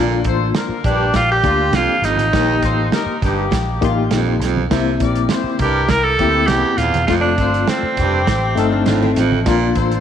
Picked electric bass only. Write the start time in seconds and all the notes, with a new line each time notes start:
Already playing: A#1
0.25 A1
0.69 muted picked electric bass stroke
0.84 A#1
1.14 A#1
1.43 D2
1.71 C2
2.02 G#1
2.17 A1
2.33 A#1
2.63 A1
3.06 muted picked electric bass stroke
3.22 G1
3.52 A#1
3.81 A1
4.11 A#1
4.40 B1
4.71 C2
5.00 A#1
5.44 muted picked electric bass stroke
5.59 C2
5.89 C2
6.19 D2
6.48 C2
6.78 D#1
6.94 E1
7.08 F1
7.38 G1
7.83 muted picked electric bass stroke
7.97 F1
8.27 A1
8.57 G1
8.86 G#1
9.17 A1
9.46 A#1
9.75 A1